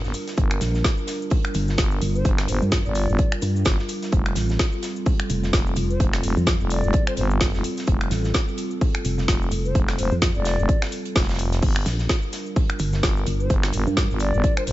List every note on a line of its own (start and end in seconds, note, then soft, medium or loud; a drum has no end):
0.00 11.58 G3 medium
0.00 4.08 D4 medium
0.00 11.58 F4 medium
0.00 4.08 A#4 medium
0.04 0.12 G1 loud
0.04 snare soft
0.04 cabasa soft
0.14 closed hi-hat medium
0.14 open hi-hat loud
0.14 cabasa medium
0.27 snare soft
0.27 open hi-hat medium
0.27 cabasa soft
0.37 0.59 G1 loud
0.37 kick loud
0.37 closed hi-hat medium
0.37 cabasa medium
0.51 finger snap medium
0.51 closed hi-hat soft
0.51 cabasa soft
0.61 0.83 A#1 loud
0.61 snare soft
0.61 closed hi-hat medium
0.61 open hi-hat loud
0.61 cabasa loud
0.75 snare soft
0.75 cabasa soft
0.84 kick loud
0.84 snare loud
0.84 closed hi-hat loud
0.84 cabasa medium
0.97 cabasa soft
1.07 snare soft
1.07 closed hi-hat medium
1.07 open hi-hat loud
1.07 cabasa loud
1.22 cabasa soft
1.30 kick loud
1.30 open hi-hat medium
1.30 cabasa soft
1.44 finger snap medium
1.44 closed hi-hat soft
1.44 cabasa soft
1.54 1.77 G1 loud
1.54 closed hi-hat medium
1.54 open hi-hat loud
1.54 cabasa loud
1.68 snare soft
1.68 cabasa soft
1.78 2.00 G1 loud
1.78 kick loud
1.78 snare loud
1.78 closed hi-hat loud
1.78 cabasa medium
1.91 cabasa soft
2.02 2.23 G1 loud
2.02 closed hi-hat medium
2.02 open hi-hat loud
2.02 cabasa medium
2.15 2.28 C5 medium
2.15 cabasa soft
2.25 2.47 G1 loud
2.25 kick loud
2.25 closed hi-hat loud
2.25 cabasa medium
2.38 finger snap medium
2.38 snare medium
2.38 snare soft
2.38 cabasa soft
2.48 2.60 G1 loud
2.48 2.64 C5 medium
2.48 closed hi-hat medium
2.48 open hi-hat loud
2.48 cabasa loud
2.62 2.83 G2 loud
2.62 cabasa soft
2.71 kick loud
2.71 snare loud
2.71 closed hi-hat loud
2.71 cabasa medium
2.85 3.07 G1 loud
2.85 3.32 D5 loud
2.85 cabasa soft
2.95 closed hi-hat medium
2.95 open hi-hat loud
2.95 cabasa loud
3.09 3.17 G1 loud
3.09 cabasa soft
3.18 kick loud
3.18 closed hi-hat medium
3.18 cabasa medium
3.32 finger snap medium
3.32 cabasa soft
3.42 3.64 G2 medium
3.42 closed hi-hat medium
3.42 open hi-hat loud
3.42 cabasa loud
3.56 cabasa soft
3.65 3.77 G1 loud
3.65 kick loud
3.65 snare loud
3.65 closed hi-hat loud
3.65 cabasa medium
3.79 snare soft
3.79 cabasa soft
3.89 closed hi-hat medium
3.89 open hi-hat loud
3.89 cabasa medium
4.02 snare soft
4.02 open hi-hat medium
4.02 cabasa soft
4.12 4.34 F1 loud
4.12 11.59 C4 medium
4.12 11.59 A4 medium
4.12 kick loud
4.12 closed hi-hat medium
4.12 cabasa medium
4.26 finger snap medium
4.26 closed hi-hat soft
4.26 cabasa soft
4.35 4.58 A1 medium
4.35 snare soft
4.35 closed hi-hat medium
4.35 open hi-hat loud
4.35 cabasa medium
4.49 snare soft
4.49 cabasa soft
4.59 kick loud
4.59 snare loud
4.59 closed hi-hat medium
4.59 cabasa medium
4.72 cabasa soft
4.82 snare medium
4.82 closed hi-hat medium
4.82 open hi-hat loud
4.82 cabasa loud
4.96 cabasa soft
5.06 kick loud
5.06 open hi-hat medium
5.06 cabasa soft
5.19 finger snap medium
5.19 closed hi-hat soft
5.19 cabasa soft
5.30 5.52 F1 loud
5.30 closed hi-hat medium
5.30 open hi-hat loud
5.30 cabasa loud
5.43 snare medium
5.43 cabasa soft
5.53 5.75 F1 medium
5.53 kick loud
5.53 snare loud
5.53 closed hi-hat medium
5.53 cabasa medium
5.67 cabasa soft
5.76 5.98 F1 loud
5.76 closed hi-hat medium
5.76 open hi-hat loud
5.76 cabasa medium
5.90 6.03 C5 medium
5.90 cabasa soft
6.00 6.22 F1 loud
6.00 kick loud
6.00 closed hi-hat loud
6.00 cabasa soft
6.13 finger snap medium
6.13 snare medium
6.13 snare soft
6.13 cabasa soft
6.23 6.35 F1 medium
6.23 closed hi-hat medium
6.23 open hi-hat loud
6.23 cabasa medium
6.37 6.58 F2 loud
6.37 cabasa soft
6.47 kick loud
6.47 snare loud
6.47 closed hi-hat medium
6.47 cabasa medium
6.60 6.82 F1 loud
6.60 cabasa soft
6.70 7.05 D5 loud
6.70 closed hi-hat medium
6.70 open hi-hat loud
6.70 cabasa loud
6.84 6.92 F1 medium
6.84 cabasa soft
6.93 kick loud
6.93 closed hi-hat medium
6.93 cabasa soft
7.07 7.14 C5 loud
7.07 finger snap medium
7.07 cabasa soft
7.17 7.52 G1 loud
7.17 7.26 C5 medium
7.17 closed hi-hat medium
7.17 open hi-hat loud
7.17 cabasa medium
7.30 cabasa soft
7.41 kick loud
7.41 snare loud
7.41 closed hi-hat loud
7.41 cabasa medium
7.54 7.63 F1 loud
7.54 snare soft
7.54 cabasa soft
7.64 closed hi-hat medium
7.64 open hi-hat loud
7.64 cabasa loud
7.77 snare soft
7.77 open hi-hat medium
7.77 cabasa soft
7.87 8.09 F1 loud
7.87 kick loud
7.87 closed hi-hat medium
7.87 cabasa medium
8.01 finger snap medium
8.01 closed hi-hat soft
8.01 cabasa soft
8.11 8.33 A1 medium
8.11 snare soft
8.11 closed hi-hat medium
8.11 open hi-hat loud
8.11 cabasa medium
8.24 snare soft
8.24 cabasa soft
8.34 kick loud
8.34 snare loud
8.34 closed hi-hat loud
8.34 cabasa medium
8.48 cabasa soft
8.58 closed hi-hat medium
8.58 open hi-hat loud
8.58 cabasa loud
8.71 cabasa soft
8.81 kick loud
8.81 open hi-hat medium
8.81 cabasa soft
8.95 finger snap medium
8.95 closed hi-hat soft
8.95 cabasa soft
9.05 9.27 F1 loud
9.05 closed hi-hat medium
9.05 open hi-hat loud
9.05 cabasa medium
9.18 snare medium
9.18 cabasa soft
9.28 9.50 F1 loud
9.28 kick loud
9.28 snare loud
9.28 closed hi-hat loud
9.28 cabasa soft
9.42 cabasa soft
9.51 9.73 F1 loud
9.51 closed hi-hat medium
9.51 open hi-hat loud
9.51 cabasa medium
9.65 9.78 C5 medium
9.65 cabasa soft
9.75 9.97 F1 loud
9.75 kick loud
9.75 closed hi-hat medium
9.75 cabasa soft
9.88 finger snap medium
9.88 snare medium
9.88 snare soft
9.88 cabasa soft
9.98 10.10 F1 medium
9.98 10.14 C5 medium
9.98 closed hi-hat medium
9.98 open hi-hat loud
9.98 cabasa loud
10.11 10.33 F2 medium
10.11 cabasa soft
10.22 kick loud
10.22 snare loud
10.22 closed hi-hat medium
10.22 cabasa soft
10.35 10.57 F1 loud
10.35 10.82 D5 loud
10.35 cabasa soft
10.45 snare loud
10.45 closed hi-hat medium
10.45 open hi-hat loud
10.45 cabasa medium
10.59 10.67 F1 loud
10.59 cabasa soft
10.69 kick loud
10.69 closed hi-hat medium
10.69 cabasa soft
10.82 finger snap medium
10.82 snare loud
10.82 closed hi-hat medium
10.82 cabasa soft
10.92 open hi-hat loud
10.92 cabasa medium
11.05 closed hi-hat medium
11.05 cabasa soft
11.15 11.61 F1 medium
11.15 kick loud
11.15 snare medium
11.15 snare loud
11.15 closed hi-hat medium
11.15 cabasa medium
11.22 snare medium
11.22 closed hi-hat medium
11.28 snare medium
11.28 closed hi-hat medium
11.28 cabasa soft
11.34 snare medium
11.34 closed hi-hat medium
11.38 closed hi-hat medium
11.38 open hi-hat loud
11.38 cabasa medium
11.52 snare soft
11.52 closed hi-hat medium
11.52 open hi-hat medium
11.52 cabasa soft
11.62 11.84 G1 loud
11.62 14.72 G3 medium
11.62 14.72 D4 medium
11.62 14.72 F4 medium
11.62 14.72 A#4 loud
11.62 kick loud
11.62 closed hi-hat medium
11.62 crash medium
11.62 cabasa soft
11.76 finger snap medium
11.76 cabasa soft
11.86 12.08 A#1 loud
11.86 snare medium
11.86 closed hi-hat medium
11.86 open hi-hat loud
11.86 cabasa medium
11.99 snare soft
11.99 cabasa soft
12.09 kick loud
12.09 snare loud
12.09 closed hi-hat medium
12.09 cabasa medium
12.22 cabasa soft
12.32 snare soft
12.32 closed hi-hat medium
12.32 open hi-hat loud
12.32 cabasa medium
12.46 cabasa soft
12.56 kick loud
12.56 open hi-hat medium
12.56 cabasa soft
12.69 finger snap medium
12.69 closed hi-hat soft
12.69 cabasa soft
12.79 13.02 G1 loud
12.79 closed hi-hat medium
12.79 open hi-hat loud
12.79 cabasa loud
12.93 snare medium
12.93 cabasa soft
13.03 13.25 G1 medium
13.03 kick loud
13.03 snare loud
13.03 closed hi-hat medium
13.03 cabasa soft
13.17 cabasa soft
13.27 13.48 G1 loud
13.27 closed hi-hat medium
13.27 open hi-hat loud
13.27 cabasa medium
13.40 13.53 C5 medium
13.40 cabasa soft
13.50 13.72 G1 loud
13.50 kick loud
13.50 closed hi-hat medium
13.50 cabasa medium
13.63 finger snap medium
13.63 snare medium
13.63 snare soft
13.63 cabasa soft
13.73 13.85 G1 loud
13.73 closed hi-hat medium
13.73 open hi-hat loud
13.73 cabasa loud
13.87 14.08 G2 loud
13.87 cabasa soft
13.97 kick loud
13.97 snare loud
13.97 closed hi-hat loud
13.97 cabasa medium
14.10 14.32 G1 loud
14.10 cabasa soft
14.20 14.55 D5 loud
14.20 closed hi-hat medium
14.20 open hi-hat loud
14.20 cabasa medium
14.34 14.42 G1 loud
14.34 cabasa soft
14.44 kick loud
14.44 closed hi-hat medium
14.44 cabasa soft
14.57 14.64 C5 medium
14.57 finger snap medium
14.57 cabasa soft
14.67 14.72 A1 loud
14.67 14.72 C5 medium
14.67 closed hi-hat medium
14.67 open hi-hat loud
14.67 cabasa loud